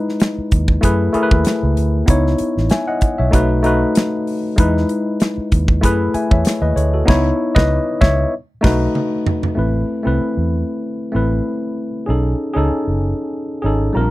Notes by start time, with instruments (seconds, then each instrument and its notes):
Already playing: tine electric piano G#3 D#4 E4 B4
0.09 snare
0.20 snare, closed hi-hat
0.38 muted fingered electric bass stroke
0.51 fingered electric bass D#2, kick, closed hi-hat
0.68 kick
0.81 fingered electric bass F#2, tine electric piano A3 E4 G#4 B4, kick, closed hi-hat
1.13 tine electric piano A3 E4 G#4 A#4, muted fingered electric bass stroke, closed hi-hat
1.23 tine electric piano B4
1.31 fingered electric bass D#2, kick
1.45 snare, closed hi-hat
1.63 fingered electric bass C#2
1.77 fingered electric bass D2, closed hi-hat
2.06 fingered electric bass C#2, tine electric piano B3 D#4 E4, kick, closed hi-hat
2.10 tine electric piano C#5
2.27 snare
2.38 muted fingered electric bass stroke, closed hi-hat
2.57 fingered electric bass A1, snare
2.70 tine electric piano E5 G#5, snare, closed hi-hat
2.88 tine electric piano D#5 F#5
3.01 muted fingered electric bass stroke, kick, closed hi-hat
3.18 fingered electric bass B1, tine electric piano C#5 E5
3.31 fingered electric bass B1, tine electric piano A3 D#4 F#4, kick, closed hi-hat
3.35 tine electric piano B4
3.63 tine electric piano A3 D#4 F#4 B4, closed hi-hat
3.95 snare, closed hi-hat
4.27 open hi-hat
4.56 fingered electric bass E2, tine electric piano G#3 D#4 E4 B4, kick, closed hi-hat
4.77 snare
4.89 closed hi-hat
5.20 snare, closed hi-hat
5.38 muted fingered electric bass stroke
5.52 fingered electric bass D#2, kick, closed hi-hat
5.68 kick
5.81 fingered electric bass F#2, tine electric piano A3 E4 G#4, kick, closed hi-hat
5.85 tine electric piano B4
6.14 tine electric piano E5 G#5, muted fingered electric bass stroke, closed hi-hat
6.31 fingered electric bass E2, tine electric piano C#5 E5, kick
6.45 snare, closed hi-hat
6.62 fingered electric bass D#2, tine electric piano B4 D#5
6.76 fingered electric bass D2, tine electric piano A4 C#5, closed hi-hat
6.94 tine electric piano F#4 A4
7.05 fingered electric bass C#2, tine electric piano B3 D#4 E4, kick, crash
7.10 tine electric piano C#5, snare
7.55 fingered electric bass C#2, tine electric piano B4 D#5, kick, snare
8.01 fingered electric bass C#2, tine electric piano C#5 E5, kick, snare
8.61 fingered electric bass B1, tine electric piano A3 D#4 F#4 B4, kick, crash
8.65 snare
8.95 mid tom
9.26 floor tom
9.43 floor tom
9.55 fingered electric bass A1, tine electric piano A3 C4 E4 B4
10.03 fingered electric bass C2, tine electric piano A3 C4 E4
10.07 tine electric piano B4
10.37 fingered electric bass E2
11.12 fingered electric bass A1, tine electric piano A3 C4 E4 B4
12.06 fingered electric bass B1, tine electric piano C#4 D#4 G#4 A4
12.54 fingered electric bass C#2, tine electric piano C#4 D#4 G#4 A4
12.87 fingered electric bass F#1
13.62 fingered electric bass G#1, tine electric piano C#4 D#4 G#4
13.66 tine electric piano A4
13.93 fingered electric bass A#1, tine electric piano G3 C4 F4 A#5
13.97 tine electric piano D4 A#4